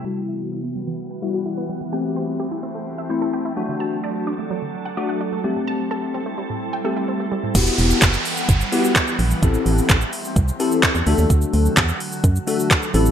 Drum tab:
CC |----------------|----------------|----------------|----------------|
HH |----------------|----------------|----------------|----------------|
SH |----------------|----------------|----------------|----------------|
CP |----------------|----------------|----------------|----------------|
SD |----------------|----------------|----------------|----------------|
BD |----------------|----------------|----------------|----------------|

CC |x---------------|----------------|----------------|
HH |x-o-x-o-x-o-x-o-|x-o-x-o-x-o-x-o-|x-o-x-o-x-o-x-o-|
SH |xxxxxxxxxxxxxxxx|xxxxxxxxxxxxxxxx|xxxxxxxxxxxxxxxx|
CP |----x-------x---|----x-------x---|----x-------x---|
SD |----o-------o---|----o-------o---|----o-------o---|
BD |o---o---o---o---|o---o---o---o---|o---o---o---o---|